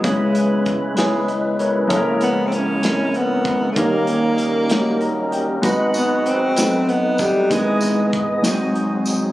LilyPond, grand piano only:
<<
  \new Staff \with { instrumentName = "Grand piano" } { \time 6/8 \key gis \minor \tempo 4. = 64 << { r2 <b' dis''>8 <ais' cis''>16 <gis' b'>16~ | <gis' b'>16 r2 r8. | r2 ais''8 g''8 | r2. |
r2. | } \\ { <gis b cis' e' b'>4 r8 <gis b cis' e' gis'>4 r8 | <gis ais cis' e' a' ais'>4 r8 <gis ais bis cis' e' ais'>4 r8 | <g ais cis' dis' ais'>4 r8 <g ais cis' dis' fis' g'>4 r8 | <gis b dis' fis' b'>4 r8 <a c' dis' fis' b'>4 r8 |
<gis b dis' e' ais' b'>4 r8 <gis bis dis' fis' bis'>4 r8 | } >> }
  \new Staff \with { instrumentName = "Grand piano" } { \clef bass \time 6/8 \key gis \minor <cis, cis>2. | <ais,, cis>2. | <dis, dis>2. | <gis,, gis,>4. <b,, b,>4. |
<gis,, gis,>4. <gis,, gis,>4. | }
>>